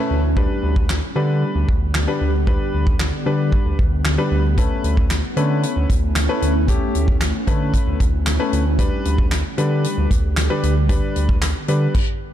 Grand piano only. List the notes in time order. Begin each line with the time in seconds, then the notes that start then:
Already playing: A3 C#4 B4 E5
0.37 G3 D4 B4
1.15 G3 D4 B4
2.07 G3 D4 B4
2.47 G3 D4 B4
3.26 G3 D4 B4
4.18 G3 D4 B4
4.58 A3 C#4 B4
5.37 A3 C#4 B4
6.29 A3 C#4 B4
6.68 A3 C#4 G4
7.47 A3 C#4 B4
8.39 A3 C#4 B4
8.78 G3 D4 B4
9.57 G3 D4 B4
10.50 G3 D4 B4
10.89 G3 D4 B4
11.68 G3 D4 B4